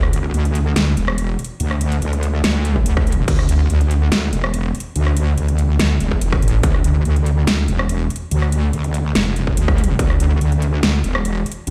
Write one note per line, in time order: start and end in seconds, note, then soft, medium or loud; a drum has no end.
0.00 0.12 D2 loud
0.00 cross-stick medium
0.13 0.33 D2 loud
0.13 closed hi-hat medium
0.34 0.74 D2 loud
0.34 closed hi-hat medium
0.45 closed hi-hat soft
0.55 closed hi-hat medium
0.76 0.95 D2 loud
0.76 snare loud
0.76 closed hi-hat medium
0.97 1.37 E1 medium
0.97 closed hi-hat medium
1.08 cross-stick medium
1.18 closed hi-hat medium
1.39 closed hi-hat soft
1.44 closed hi-hat medium
1.60 2.00 D2 loud
1.60 closed hi-hat medium
1.71 cross-stick medium
1.81 closed hi-hat medium
1.92 closed hi-hat soft
2.02 2.42 D2 medium
2.02 closed hi-hat medium
2.13 closed hi-hat soft
2.23 closed hi-hat medium
2.44 2.84 D2 loud
2.44 snare loud
2.44 closed hi-hat medium
2.65 closed hi-hat medium
2.76 kick medium
2.86 3.26 D2 loud
2.86 closed hi-hat medium
2.97 kick loud
2.97 cross-stick medium
3.07 closed hi-hat medium
3.12 closed hi-hat medium
3.28 3.47 D2 loud
3.28 kick loud
3.28 closed hi-hat medium
3.28 crash medium
3.39 cross-stick medium
3.49 3.68 D2 loud
3.49 closed hi-hat medium
3.70 4.10 D2 medium
3.70 closed hi-hat medium
3.81 closed hi-hat soft
3.91 closed hi-hat medium
4.12 4.31 D2 loud
4.12 snare loud
4.12 closed hi-hat medium
4.33 4.73 E1 loud
4.33 closed hi-hat medium
4.44 cross-stick medium
4.54 closed hi-hat medium
4.75 closed hi-hat medium
4.80 closed hi-hat medium
4.96 5.36 D2 loud
4.96 closed hi-hat medium
5.07 cross-stick medium
5.17 closed hi-hat medium
5.37 5.78 D2 loud
5.37 closed hi-hat medium
5.48 closed hi-hat soft
5.59 closed hi-hat medium
5.79 5.99 D2 loud
5.79 snare loud
5.79 closed hi-hat medium
6.00 6.41 E1 medium
6.00 closed hi-hat medium
6.11 kick medium
6.21 closed hi-hat medium
6.32 kick loud
6.32 cross-stick medium
6.42 6.62 A1 loud
6.42 closed hi-hat medium
6.48 closed hi-hat medium
6.63 6.83 D2 loud
6.63 kick loud
6.63 closed hi-hat medium
6.74 cross-stick medium
6.84 7.04 D2 loud
6.84 closed hi-hat medium
7.05 7.46 D2 loud
7.05 closed hi-hat medium
7.16 closed hi-hat soft
7.26 closed hi-hat medium
7.47 7.67 D2 loud
7.47 snare loud
7.47 closed hi-hat medium
7.68 8.09 E1 medium
7.68 closed hi-hat medium
7.79 cross-stick medium
7.89 closed hi-hat medium
8.10 closed hi-hat medium
8.16 closed hi-hat medium
8.31 8.72 D2 loud
8.31 closed hi-hat medium
8.42 cross-stick medium
8.52 closed hi-hat medium
8.73 9.14 D2 loud
8.73 closed hi-hat medium
8.84 closed hi-hat soft
8.94 closed hi-hat medium
9.15 9.56 F1 loud
9.15 snare loud
9.15 closed hi-hat medium
9.36 closed hi-hat medium
9.47 kick medium
9.57 9.98 D2 loud
9.57 closed hi-hat medium
9.68 kick loud
9.68 cross-stick medium
9.78 closed hi-hat soft
9.84 closed hi-hat medium
9.99 10.19 D2 loud
9.99 kick loud
9.99 closed hi-hat medium
10.10 cross-stick medium
10.20 10.39 D2 loud
10.20 closed hi-hat medium
10.41 10.81 D2 loud
10.41 closed hi-hat medium
10.52 closed hi-hat soft
10.62 closed hi-hat medium
10.83 11.02 D2 loud
10.83 snare loud
10.83 closed hi-hat medium
11.04 11.44 E1 loud
11.04 closed hi-hat medium
11.15 cross-stick medium
11.25 closed hi-hat medium
11.46 closed hi-hat soft
11.52 closed hi-hat medium
11.67 11.70 D2 loud
11.67 closed hi-hat medium